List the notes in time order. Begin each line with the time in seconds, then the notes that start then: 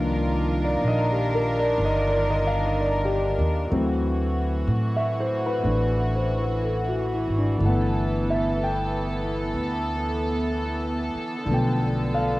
Already playing: C2 D#3 F3 A#3 D4 F4 A#4
0.65 D5
0.81 A#1
0.88 D#5
1.12 G4
1.35 A#4
1.60 D5
1.78 G1
1.85 D#5
2.09 D5
2.30 D#5
2.47 F5
2.66 D#5
2.81 D5
3.05 G4
3.39 D#2
3.69 D2 E3 F#3 A3 C4 F#4
4.67 A2
4.96 E5
5.20 C5
5.46 B4
5.63 A1 A3 D4
6.16 C5
6.39 B4
6.64 A4
6.88 F#4
7.13 E4
7.28 G#1
7.38 D4
7.57 G1 D3 E3 B3 A4
7.64 A3 B3 F#5
8.30 E5
8.63 G5
9.54 D2
11.15 muted upright bass stroke
11.45 B1 D3 F3 A3
11.51 B3 G5
12.15 F5